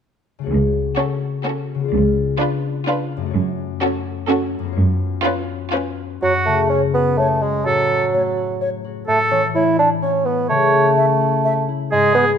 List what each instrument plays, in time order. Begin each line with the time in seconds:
0.39 harp C#3 A3
0.43 harp F#4 C#5
0.50 cello section C#2
0.97 viola section C#4, violin section F#4 A4
1.46 viola section C#4, violin section F#4 A4
1.75 harp C#3
1.79 harp B3
1.84 harp F4
1.88 harp D5
1.92 cello section C#2
2.40 viola section D4, violin section F4 B4
2.87 viola section D4, violin section F4 B4
3.17 harp F#2
3.21 harp A3
3.26 harp F#4
3.30 harp C#5
3.35 cello section F#2
3.81 viola section C#4, violin section F#4 A4
4.29 viola section C#4, violin section F#4 A4
4.59 harp F#2
4.63 harp B3
4.68 harp F4
4.72 harp C#5
4.77 cello section F#2
5.24 viola section C#4, violin section F4 B4
5.72 viola section C#4, violin section F4 B4
6.22 harp F#2, bassoon F#3, oboe F#4
6.46 harp C#3, bassoon A3
6.70 harp A3, bassoon C#4, flute C#5
6.94 bassoon B3, harp F#4
7.18 bassoon A3, harp C#5, flute C#5
7.42 bassoon G#3, harp F#4
7.65 harp A2, bassoon F#3, oboe A4
7.90 harp F#3
8.13 harp A3, flute C#5
8.37 harp F#4
8.61 harp C#5, flute C#5
8.84 harp F#4
9.07 harp A2, bassoon A3, oboe A4
9.31 harp E3, bassoon C#4
9.55 harp A3, bassoon E4, flute C#5
9.79 bassoon D4, harp E4
10.02 bassoon C#4, harp C#5, flute C#5
10.25 bassoon B3, harp E4
10.49 harp C#3, bassoon A3, oboe C#5
10.73 harp C#4
10.97 harp A3, flute E5
11.20 harp E4
11.45 harp C#5, flute E5
11.68 harp E4
11.91 harp G#2, bassoon G#3, oboe G#4
12.15 harp G#3, bassoon B3